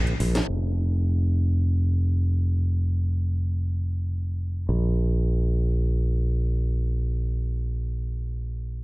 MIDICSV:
0, 0, Header, 1, 3, 480
1, 0, Start_track
1, 0, Tempo, 500000
1, 8484, End_track
2, 0, Start_track
2, 0, Title_t, "Fingered electric bass"
2, 0, Program_c, 0, 33
2, 0, Note_on_c, 0, 34, 82
2, 124, Note_off_c, 0, 34, 0
2, 192, Note_on_c, 0, 34, 89
2, 376, Note_off_c, 0, 34, 0
2, 461, Note_on_c, 0, 29, 76
2, 4474, Note_off_c, 0, 29, 0
2, 4500, Note_on_c, 0, 34, 79
2, 8484, Note_off_c, 0, 34, 0
2, 8484, End_track
3, 0, Start_track
3, 0, Title_t, "Drums"
3, 66, Note_on_c, 9, 42, 38
3, 162, Note_off_c, 9, 42, 0
3, 194, Note_on_c, 9, 46, 84
3, 290, Note_off_c, 9, 46, 0
3, 337, Note_on_c, 9, 38, 79
3, 337, Note_on_c, 9, 42, 55
3, 433, Note_off_c, 9, 38, 0
3, 433, Note_off_c, 9, 42, 0
3, 8484, End_track
0, 0, End_of_file